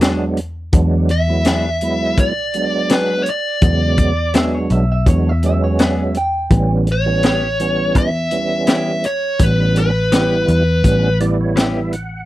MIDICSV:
0, 0, Header, 1, 7, 480
1, 0, Start_track
1, 0, Tempo, 722022
1, 490, Time_signature, 4, 2, 24, 8
1, 8146, End_track
2, 0, Start_track
2, 0, Title_t, "Clean electric guitar"
2, 0, Program_c, 0, 27
2, 2896, Note_on_c, 0, 76, 91
2, 3015, Note_off_c, 0, 76, 0
2, 3022, Note_on_c, 0, 73, 74
2, 3131, Note_off_c, 0, 73, 0
2, 3140, Note_on_c, 0, 76, 70
2, 3257, Note_off_c, 0, 76, 0
2, 3270, Note_on_c, 0, 76, 77
2, 3375, Note_off_c, 0, 76, 0
2, 3381, Note_on_c, 0, 73, 78
2, 3518, Note_off_c, 0, 73, 0
2, 3518, Note_on_c, 0, 76, 73
2, 3619, Note_off_c, 0, 76, 0
2, 3630, Note_on_c, 0, 76, 86
2, 3742, Note_off_c, 0, 76, 0
2, 3748, Note_on_c, 0, 73, 77
2, 3854, Note_off_c, 0, 73, 0
2, 3867, Note_on_c, 0, 76, 73
2, 4092, Note_off_c, 0, 76, 0
2, 4104, Note_on_c, 0, 79, 83
2, 4452, Note_off_c, 0, 79, 0
2, 8146, End_track
3, 0, Start_track
3, 0, Title_t, "Lead electric guitar"
3, 0, Program_c, 1, 29
3, 738, Note_on_c, 1, 76, 105
3, 1458, Note_off_c, 1, 76, 0
3, 1460, Note_on_c, 1, 74, 86
3, 1948, Note_on_c, 1, 71, 76
3, 1950, Note_off_c, 1, 74, 0
3, 2141, Note_off_c, 1, 71, 0
3, 2143, Note_on_c, 1, 73, 54
3, 2180, Note_off_c, 1, 73, 0
3, 2192, Note_on_c, 1, 74, 80
3, 2875, Note_off_c, 1, 74, 0
3, 4599, Note_on_c, 1, 73, 86
3, 5303, Note_off_c, 1, 73, 0
3, 5306, Note_on_c, 1, 76, 97
3, 5776, Note_off_c, 1, 76, 0
3, 5784, Note_on_c, 1, 76, 93
3, 6020, Note_off_c, 1, 76, 0
3, 6023, Note_on_c, 1, 73, 78
3, 6263, Note_off_c, 1, 73, 0
3, 6271, Note_on_c, 1, 71, 84
3, 6497, Note_off_c, 1, 71, 0
3, 6505, Note_on_c, 1, 71, 76
3, 7430, Note_off_c, 1, 71, 0
3, 8146, End_track
4, 0, Start_track
4, 0, Title_t, "Clean electric guitar"
4, 0, Program_c, 2, 27
4, 9, Note_on_c, 2, 54, 75
4, 15, Note_on_c, 2, 59, 76
4, 16, Note_on_c, 2, 62, 83
4, 19, Note_on_c, 2, 68, 89
4, 157, Note_off_c, 2, 54, 0
4, 160, Note_off_c, 2, 59, 0
4, 161, Note_off_c, 2, 62, 0
4, 162, Note_off_c, 2, 68, 0
4, 970, Note_on_c, 2, 54, 69
4, 973, Note_on_c, 2, 59, 68
4, 978, Note_on_c, 2, 62, 78
4, 981, Note_on_c, 2, 68, 78
4, 1118, Note_off_c, 2, 54, 0
4, 1120, Note_off_c, 2, 59, 0
4, 1122, Note_off_c, 2, 62, 0
4, 1124, Note_off_c, 2, 68, 0
4, 1930, Note_on_c, 2, 54, 66
4, 1935, Note_on_c, 2, 59, 69
4, 1938, Note_on_c, 2, 62, 69
4, 1943, Note_on_c, 2, 68, 80
4, 2079, Note_off_c, 2, 54, 0
4, 2081, Note_off_c, 2, 59, 0
4, 2083, Note_off_c, 2, 62, 0
4, 2085, Note_off_c, 2, 68, 0
4, 2890, Note_on_c, 2, 54, 73
4, 2894, Note_on_c, 2, 59, 75
4, 2896, Note_on_c, 2, 62, 70
4, 2902, Note_on_c, 2, 68, 80
4, 3039, Note_off_c, 2, 54, 0
4, 3041, Note_off_c, 2, 59, 0
4, 3042, Note_off_c, 2, 62, 0
4, 3045, Note_off_c, 2, 68, 0
4, 3854, Note_on_c, 2, 54, 70
4, 3856, Note_on_c, 2, 59, 82
4, 3860, Note_on_c, 2, 62, 74
4, 3865, Note_on_c, 2, 68, 87
4, 4001, Note_off_c, 2, 54, 0
4, 4002, Note_off_c, 2, 59, 0
4, 4004, Note_off_c, 2, 62, 0
4, 4006, Note_off_c, 2, 68, 0
4, 4811, Note_on_c, 2, 52, 65
4, 4816, Note_on_c, 2, 59, 72
4, 4820, Note_on_c, 2, 61, 75
4, 4822, Note_on_c, 2, 67, 73
4, 4959, Note_off_c, 2, 52, 0
4, 4962, Note_off_c, 2, 59, 0
4, 4964, Note_off_c, 2, 61, 0
4, 4965, Note_off_c, 2, 67, 0
4, 5767, Note_on_c, 2, 52, 65
4, 5771, Note_on_c, 2, 59, 71
4, 5774, Note_on_c, 2, 61, 69
4, 5779, Note_on_c, 2, 67, 72
4, 5917, Note_off_c, 2, 52, 0
4, 5919, Note_off_c, 2, 59, 0
4, 5921, Note_off_c, 2, 61, 0
4, 5923, Note_off_c, 2, 67, 0
4, 6728, Note_on_c, 2, 52, 71
4, 6730, Note_on_c, 2, 59, 67
4, 6733, Note_on_c, 2, 61, 74
4, 6736, Note_on_c, 2, 67, 74
4, 6877, Note_off_c, 2, 52, 0
4, 6878, Note_off_c, 2, 59, 0
4, 6880, Note_off_c, 2, 61, 0
4, 6881, Note_off_c, 2, 67, 0
4, 7685, Note_on_c, 2, 52, 73
4, 7690, Note_on_c, 2, 59, 76
4, 7691, Note_on_c, 2, 61, 86
4, 7696, Note_on_c, 2, 67, 91
4, 7835, Note_off_c, 2, 52, 0
4, 7837, Note_off_c, 2, 59, 0
4, 7838, Note_off_c, 2, 61, 0
4, 7841, Note_off_c, 2, 67, 0
4, 8146, End_track
5, 0, Start_track
5, 0, Title_t, "Tonewheel organ"
5, 0, Program_c, 3, 16
5, 0, Note_on_c, 3, 54, 91
5, 0, Note_on_c, 3, 56, 81
5, 0, Note_on_c, 3, 59, 88
5, 0, Note_on_c, 3, 62, 104
5, 264, Note_off_c, 3, 54, 0
5, 265, Note_off_c, 3, 56, 0
5, 268, Note_off_c, 3, 59, 0
5, 269, Note_off_c, 3, 62, 0
5, 482, Note_on_c, 3, 54, 92
5, 485, Note_on_c, 3, 56, 84
5, 488, Note_on_c, 3, 59, 83
5, 494, Note_on_c, 3, 62, 94
5, 736, Note_off_c, 3, 54, 0
5, 737, Note_off_c, 3, 56, 0
5, 739, Note_off_c, 3, 59, 0
5, 741, Note_off_c, 3, 62, 0
5, 849, Note_on_c, 3, 54, 63
5, 854, Note_on_c, 3, 56, 62
5, 857, Note_on_c, 3, 59, 60
5, 861, Note_on_c, 3, 64, 69
5, 1101, Note_off_c, 3, 54, 0
5, 1103, Note_off_c, 3, 56, 0
5, 1105, Note_off_c, 3, 59, 0
5, 1107, Note_off_c, 3, 64, 0
5, 1211, Note_on_c, 3, 54, 82
5, 1214, Note_on_c, 3, 56, 78
5, 1216, Note_on_c, 3, 59, 72
5, 1218, Note_on_c, 3, 64, 89
5, 1547, Note_off_c, 3, 54, 0
5, 1549, Note_off_c, 3, 56, 0
5, 1550, Note_off_c, 3, 59, 0
5, 1551, Note_off_c, 3, 64, 0
5, 1691, Note_on_c, 3, 54, 69
5, 1696, Note_on_c, 3, 56, 65
5, 1698, Note_on_c, 3, 59, 63
5, 1702, Note_on_c, 3, 62, 72
5, 2191, Note_off_c, 3, 54, 0
5, 2193, Note_off_c, 3, 56, 0
5, 2194, Note_off_c, 3, 59, 0
5, 2196, Note_off_c, 3, 62, 0
5, 2404, Note_on_c, 3, 54, 75
5, 2408, Note_on_c, 3, 56, 71
5, 2412, Note_on_c, 3, 59, 71
5, 2415, Note_on_c, 3, 49, 82
5, 2744, Note_off_c, 3, 54, 0
5, 2746, Note_off_c, 3, 56, 0
5, 2748, Note_off_c, 3, 59, 0
5, 2749, Note_off_c, 3, 49, 0
5, 2883, Note_on_c, 3, 54, 90
5, 2886, Note_on_c, 3, 56, 76
5, 2893, Note_on_c, 3, 59, 80
5, 2895, Note_on_c, 3, 62, 94
5, 3223, Note_off_c, 3, 54, 0
5, 3225, Note_off_c, 3, 56, 0
5, 3228, Note_off_c, 3, 59, 0
5, 3229, Note_off_c, 3, 62, 0
5, 3363, Note_on_c, 3, 54, 82
5, 3366, Note_on_c, 3, 56, 81
5, 3370, Note_on_c, 3, 59, 78
5, 3372, Note_on_c, 3, 62, 93
5, 3537, Note_off_c, 3, 54, 0
5, 3538, Note_off_c, 3, 56, 0
5, 3540, Note_off_c, 3, 59, 0
5, 3541, Note_off_c, 3, 62, 0
5, 3607, Note_on_c, 3, 54, 81
5, 3608, Note_on_c, 3, 56, 80
5, 3612, Note_on_c, 3, 59, 75
5, 3616, Note_on_c, 3, 61, 97
5, 4108, Note_off_c, 3, 54, 0
5, 4109, Note_off_c, 3, 56, 0
5, 4111, Note_off_c, 3, 59, 0
5, 4113, Note_off_c, 3, 61, 0
5, 4327, Note_on_c, 3, 52, 93
5, 4329, Note_on_c, 3, 55, 82
5, 4331, Note_on_c, 3, 59, 80
5, 4336, Note_on_c, 3, 61, 99
5, 4579, Note_off_c, 3, 52, 0
5, 4580, Note_off_c, 3, 55, 0
5, 4581, Note_off_c, 3, 59, 0
5, 4583, Note_off_c, 3, 61, 0
5, 4691, Note_on_c, 3, 52, 59
5, 4693, Note_on_c, 3, 55, 58
5, 4698, Note_on_c, 3, 59, 54
5, 4701, Note_on_c, 3, 61, 68
5, 4942, Note_off_c, 3, 52, 0
5, 4944, Note_off_c, 3, 55, 0
5, 4946, Note_off_c, 3, 59, 0
5, 4948, Note_off_c, 3, 61, 0
5, 5050, Note_on_c, 3, 52, 80
5, 5052, Note_on_c, 3, 55, 77
5, 5055, Note_on_c, 3, 59, 72
5, 5059, Note_on_c, 3, 61, 86
5, 5386, Note_off_c, 3, 52, 0
5, 5388, Note_off_c, 3, 55, 0
5, 5389, Note_off_c, 3, 59, 0
5, 5391, Note_off_c, 3, 61, 0
5, 5528, Note_on_c, 3, 52, 61
5, 5529, Note_on_c, 3, 55, 63
5, 5534, Note_on_c, 3, 59, 63
5, 5537, Note_on_c, 3, 61, 73
5, 6028, Note_off_c, 3, 52, 0
5, 6029, Note_off_c, 3, 55, 0
5, 6031, Note_off_c, 3, 59, 0
5, 6033, Note_off_c, 3, 61, 0
5, 6251, Note_on_c, 3, 52, 79
5, 6254, Note_on_c, 3, 55, 70
5, 6257, Note_on_c, 3, 59, 69
5, 6261, Note_on_c, 3, 61, 80
5, 6586, Note_off_c, 3, 52, 0
5, 6588, Note_off_c, 3, 55, 0
5, 6589, Note_off_c, 3, 59, 0
5, 6591, Note_off_c, 3, 61, 0
5, 6730, Note_on_c, 3, 52, 77
5, 6734, Note_on_c, 3, 55, 67
5, 6736, Note_on_c, 3, 59, 67
5, 6738, Note_on_c, 3, 64, 78
5, 7066, Note_off_c, 3, 52, 0
5, 7067, Note_off_c, 3, 55, 0
5, 7069, Note_off_c, 3, 59, 0
5, 7070, Note_off_c, 3, 64, 0
5, 7204, Note_on_c, 3, 52, 94
5, 7207, Note_on_c, 3, 55, 81
5, 7210, Note_on_c, 3, 59, 84
5, 7215, Note_on_c, 3, 61, 102
5, 7376, Note_off_c, 3, 52, 0
5, 7377, Note_off_c, 3, 55, 0
5, 7379, Note_off_c, 3, 59, 0
5, 7381, Note_off_c, 3, 61, 0
5, 7445, Note_on_c, 3, 52, 92
5, 7450, Note_on_c, 3, 74, 60
5, 7451, Note_on_c, 3, 55, 80
5, 7452, Note_on_c, 3, 59, 82
5, 7457, Note_on_c, 3, 64, 100
5, 7566, Note_off_c, 3, 74, 0
5, 7583, Note_on_c, 3, 73, 62
5, 7686, Note_off_c, 3, 73, 0
5, 7696, Note_on_c, 3, 76, 68
5, 7809, Note_off_c, 3, 76, 0
5, 7820, Note_on_c, 3, 76, 59
5, 7924, Note_off_c, 3, 76, 0
5, 7932, Note_on_c, 3, 78, 67
5, 7946, Note_off_c, 3, 52, 0
5, 7948, Note_off_c, 3, 55, 0
5, 7949, Note_off_c, 3, 59, 0
5, 7952, Note_off_c, 3, 64, 0
5, 8146, Note_off_c, 3, 78, 0
5, 8146, End_track
6, 0, Start_track
6, 0, Title_t, "Picked electric bass"
6, 0, Program_c, 4, 34
6, 0, Note_on_c, 4, 40, 105
6, 463, Note_off_c, 4, 40, 0
6, 487, Note_on_c, 4, 40, 90
6, 1449, Note_off_c, 4, 40, 0
6, 1449, Note_on_c, 4, 35, 90
6, 2384, Note_off_c, 4, 35, 0
6, 2407, Note_on_c, 4, 40, 83
6, 3103, Note_off_c, 4, 40, 0
6, 3130, Note_on_c, 4, 35, 76
6, 3357, Note_off_c, 4, 35, 0
6, 3369, Note_on_c, 4, 40, 104
6, 4304, Note_off_c, 4, 40, 0
6, 4326, Note_on_c, 4, 33, 85
6, 5290, Note_off_c, 4, 33, 0
6, 5290, Note_on_c, 4, 40, 82
6, 6223, Note_off_c, 4, 40, 0
6, 6248, Note_on_c, 4, 33, 82
6, 6942, Note_off_c, 4, 33, 0
6, 6971, Note_on_c, 4, 40, 77
6, 7197, Note_off_c, 4, 40, 0
6, 7209, Note_on_c, 4, 33, 98
6, 8142, Note_off_c, 4, 33, 0
6, 8146, End_track
7, 0, Start_track
7, 0, Title_t, "Drums"
7, 6, Note_on_c, 9, 42, 71
7, 17, Note_on_c, 9, 38, 97
7, 73, Note_off_c, 9, 42, 0
7, 83, Note_off_c, 9, 38, 0
7, 245, Note_on_c, 9, 42, 57
7, 312, Note_off_c, 9, 42, 0
7, 482, Note_on_c, 9, 42, 72
7, 485, Note_on_c, 9, 36, 103
7, 549, Note_off_c, 9, 42, 0
7, 552, Note_off_c, 9, 36, 0
7, 724, Note_on_c, 9, 42, 58
7, 790, Note_off_c, 9, 42, 0
7, 961, Note_on_c, 9, 42, 79
7, 972, Note_on_c, 9, 38, 110
7, 1028, Note_off_c, 9, 42, 0
7, 1038, Note_off_c, 9, 38, 0
7, 1202, Note_on_c, 9, 42, 56
7, 1269, Note_off_c, 9, 42, 0
7, 1444, Note_on_c, 9, 42, 81
7, 1447, Note_on_c, 9, 36, 74
7, 1511, Note_off_c, 9, 42, 0
7, 1513, Note_off_c, 9, 36, 0
7, 1685, Note_on_c, 9, 42, 56
7, 1752, Note_off_c, 9, 42, 0
7, 1924, Note_on_c, 9, 42, 82
7, 1935, Note_on_c, 9, 38, 104
7, 1990, Note_off_c, 9, 42, 0
7, 2001, Note_off_c, 9, 38, 0
7, 2166, Note_on_c, 9, 42, 61
7, 2233, Note_off_c, 9, 42, 0
7, 2403, Note_on_c, 9, 42, 73
7, 2407, Note_on_c, 9, 36, 101
7, 2469, Note_off_c, 9, 42, 0
7, 2474, Note_off_c, 9, 36, 0
7, 2642, Note_on_c, 9, 42, 56
7, 2646, Note_on_c, 9, 36, 69
7, 2709, Note_off_c, 9, 42, 0
7, 2713, Note_off_c, 9, 36, 0
7, 2883, Note_on_c, 9, 42, 86
7, 2894, Note_on_c, 9, 38, 107
7, 2949, Note_off_c, 9, 42, 0
7, 2960, Note_off_c, 9, 38, 0
7, 3124, Note_on_c, 9, 42, 57
7, 3191, Note_off_c, 9, 42, 0
7, 3366, Note_on_c, 9, 42, 69
7, 3367, Note_on_c, 9, 36, 81
7, 3432, Note_off_c, 9, 42, 0
7, 3433, Note_off_c, 9, 36, 0
7, 3607, Note_on_c, 9, 42, 53
7, 3674, Note_off_c, 9, 42, 0
7, 3848, Note_on_c, 9, 42, 76
7, 3858, Note_on_c, 9, 38, 99
7, 3914, Note_off_c, 9, 42, 0
7, 3925, Note_off_c, 9, 38, 0
7, 4085, Note_on_c, 9, 42, 58
7, 4151, Note_off_c, 9, 42, 0
7, 4324, Note_on_c, 9, 42, 65
7, 4326, Note_on_c, 9, 36, 98
7, 4391, Note_off_c, 9, 42, 0
7, 4392, Note_off_c, 9, 36, 0
7, 4566, Note_on_c, 9, 42, 52
7, 4632, Note_off_c, 9, 42, 0
7, 4805, Note_on_c, 9, 42, 77
7, 4816, Note_on_c, 9, 38, 110
7, 4871, Note_off_c, 9, 42, 0
7, 4882, Note_off_c, 9, 38, 0
7, 5049, Note_on_c, 9, 42, 61
7, 5116, Note_off_c, 9, 42, 0
7, 5285, Note_on_c, 9, 42, 70
7, 5287, Note_on_c, 9, 36, 78
7, 5352, Note_off_c, 9, 42, 0
7, 5353, Note_off_c, 9, 36, 0
7, 5524, Note_on_c, 9, 42, 54
7, 5590, Note_off_c, 9, 42, 0
7, 5762, Note_on_c, 9, 42, 80
7, 5773, Note_on_c, 9, 38, 102
7, 5829, Note_off_c, 9, 42, 0
7, 5840, Note_off_c, 9, 38, 0
7, 6007, Note_on_c, 9, 42, 60
7, 6074, Note_off_c, 9, 42, 0
7, 6244, Note_on_c, 9, 42, 75
7, 6247, Note_on_c, 9, 36, 94
7, 6310, Note_off_c, 9, 42, 0
7, 6313, Note_off_c, 9, 36, 0
7, 6486, Note_on_c, 9, 42, 63
7, 6553, Note_off_c, 9, 42, 0
7, 6727, Note_on_c, 9, 42, 89
7, 6738, Note_on_c, 9, 38, 115
7, 6794, Note_off_c, 9, 42, 0
7, 6804, Note_off_c, 9, 38, 0
7, 6968, Note_on_c, 9, 42, 59
7, 7035, Note_off_c, 9, 42, 0
7, 7208, Note_on_c, 9, 36, 80
7, 7208, Note_on_c, 9, 42, 77
7, 7274, Note_off_c, 9, 36, 0
7, 7275, Note_off_c, 9, 42, 0
7, 7448, Note_on_c, 9, 42, 55
7, 7514, Note_off_c, 9, 42, 0
7, 7690, Note_on_c, 9, 42, 78
7, 7700, Note_on_c, 9, 38, 98
7, 7756, Note_off_c, 9, 42, 0
7, 7767, Note_off_c, 9, 38, 0
7, 7928, Note_on_c, 9, 42, 54
7, 7995, Note_off_c, 9, 42, 0
7, 8146, End_track
0, 0, End_of_file